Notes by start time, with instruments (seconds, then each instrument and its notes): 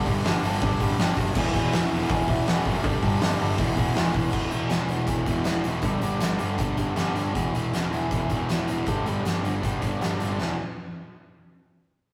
0.06 picked electric bass G1, distorted electric guitar G2 D3 G3, kick, open hi-hat
0.24 picked electric bass G1, distorted electric guitar G2 D3 G3, snare, open hi-hat
0.43 picked electric bass G1, distorted electric guitar G2 D3 G3, open hi-hat
0.62 picked electric bass G1, distorted electric guitar G2 D3 G3, kick, open hi-hat
0.80 picked electric bass G1, distorted electric guitar G2 D3 G3, kick, open hi-hat
0.98 picked electric bass G1, distorted electric guitar G2 D3 G3, snare, open hi-hat
1.16 picked electric bass F#1, distorted electric guitar G2 D3 G3, kick, open hi-hat
1.35 picked electric bass E1, distorted electric guitar E2 B2 E3, kick, crash
1.54 picked electric bass E1, distorted electric guitar E2 B2 E3, kick, snare, open hi-hat
1.72 picked electric bass E1, distorted electric guitar E2 B2 E3, snare, open hi-hat
1.83 snare
1.91 picked electric bass E1, distorted electric guitar E2 B2 E3, open hi-hat
2.09 picked electric bass E1, distorted electric guitar E2 B2 E3, kick, open hi-hat
2.28 picked electric bass E1, distorted electric guitar E2 B2 E3, kick, open hi-hat
2.47 picked electric bass E1, distorted electric guitar E2 B2 E3, snare, open hi-hat
2.65 picked electric bass F#1, distorted electric guitar E2 B2 E3, kick, open hi-hat
2.83 picked electric bass G1, distorted electric guitar G2 D3 G3, kick, open hi-hat
3.02 picked electric bass G1, distorted electric guitar G2 D3 G3, kick, open hi-hat
3.21 picked electric bass G1, distorted electric guitar G2 D3 G3, snare, open hi-hat
3.40 picked electric bass G1, distorted electric guitar G2 D3 G3, open hi-hat
3.58 picked electric bass E1, distorted electric guitar E2 B2 E3, kick, open hi-hat
3.76 picked electric bass E1, distorted electric guitar E2 B2 E3, kick, open hi-hat
3.95 picked electric bass E1, distorted electric guitar E2 B2 E3, snare, open hi-hat
4.13 picked electric bass E1, distorted electric guitar E2 B2 E3, kick, open hi-hat
4.30 picked electric bass E1, distorted electric guitar E2 B2 E3, kick, crash
4.51 picked electric bass E1, distorted electric guitar E2 B2 E3, closed hi-hat
4.69 picked electric bass E1, distorted electric guitar E2 B2 E3, snare, closed hi-hat
4.88 picked electric bass E1, distorted electric guitar E2 B2 E3, closed hi-hat
5.07 picked electric bass E1, distorted electric guitar E2 B2 E3, kick, closed hi-hat
5.26 picked electric bass E1, distorted electric guitar E2 B2 E3, kick, closed hi-hat
5.44 picked electric bass E1, distorted electric guitar E2 B2 E3, snare, closed hi-hat
5.64 picked electric bass E1, distorted electric guitar E2 B2 E3, closed hi-hat
5.82 picked electric bass G1, distorted electric guitar G2 D3 G3, kick, closed hi-hat
6.01 picked electric bass G1, distorted electric guitar G2 D3 G3, closed hi-hat
6.20 picked electric bass G1, distorted electric guitar G2 D3 G3, snare, closed hi-hat
6.39 picked electric bass G1, distorted electric guitar G2 D3 G3, closed hi-hat
6.58 picked electric bass G1, distorted electric guitar G2 D3 G3, kick, closed hi-hat
6.76 picked electric bass G1, distorted electric guitar G2 D3 G3, kick, closed hi-hat
6.96 picked electric bass G1, distorted electric guitar G2 D3 G3, snare, closed hi-hat
7.15 picked electric bass G1, distorted electric guitar G2 D3 G3, closed hi-hat
7.34 picked electric bass E1, distorted electric guitar E2 B2 E3, kick, closed hi-hat
7.53 picked electric bass E1, distorted electric guitar E2 B2 E3, closed hi-hat
7.72 picked electric bass E1, distorted electric guitar E2 B2 E3, snare, closed hi-hat
7.91 picked electric bass E1, distorted electric guitar E2 B2 E3, closed hi-hat
8.11 picked electric bass E1, distorted electric guitar E2 B2 E3, kick, closed hi-hat
8.30 picked electric bass E1, distorted electric guitar E2 B2 E3, kick, closed hi-hat
8.49 picked electric bass E1, distorted electric guitar E2 B2 E3, snare, closed hi-hat
8.68 picked electric bass E1, distorted electric guitar E2 B2 E3, closed hi-hat
8.86 picked electric bass G1, distorted electric guitar G2 D3 G3, kick, closed hi-hat
9.05 picked electric bass G1, distorted electric guitar G2 D3 G3, closed hi-hat
9.23 picked electric bass G1, distorted electric guitar G2 D3 G3, snare, closed hi-hat
9.42 picked electric bass G1, distorted electric guitar G2 D3 G3, closed hi-hat
9.62 picked electric bass G1, distorted electric guitar G2 D3 G3, kick, closed hi-hat
9.81 picked electric bass G1, distorted electric guitar G2 D3 G3, kick, closed hi-hat
10.01 picked electric bass G1, distorted electric guitar G2 D3 G3, snare, closed hi-hat
10.20 picked electric bass G1, distorted electric guitar G2 D3 G3, closed hi-hat
10.40 picked electric bass E1, distorted electric guitar E2 B2 E3, snare